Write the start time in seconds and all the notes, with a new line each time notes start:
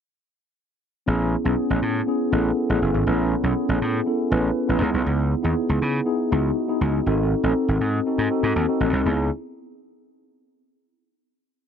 1.06 A1 B3 C#4 E4 G#4
1.44 B1 B3 C#4 E4 G#4
1.70 A1
1.82 A2
2.07 B3 C#4 E4 G#4
2.31 A1 B3 C#4 E4 A4
2.69 A1 B3 C#4 E4 G#4
2.82 F#1
2.94 G#1
3.07 A1 B3 C#4 E4 B4
3.43 B1 B3 C#4 E4 G#4
3.69 A1
3.81 A2
4.06 B3 C#4 E4 A4
4.30 A1 B3 C#4 E4 B4
4.68 A1 B3 C#4 E4 B4
4.80 C#2 B3 D#4 E4 G#4
4.94 B1
5.06 C#2
5.43 D#2 B3 D#4 E4 G#4
5.69 C#2
5.82 C#3
6.05 B3 D#4 E4 G#4
6.31 C#2 B3 D#4 E4 F#4
6.68 B3 D#4 E4 G#4
6.81 C#2
7.06 G#1 C4 D#4 F#4 A4
7.43 A1 C4 D#4 F#4 A4
7.68 G#1
7.81 G#2
8.06 C4 D#4 F#4 A4
8.18 G#2
8.30 C4 D#4 F#4 A4
8.43 G#2
8.56 D#2
8.68 C4 D#4 F#4 A4
8.80 A1
8.93 C2
9.06 C#2 B3 D#4 E4 G#4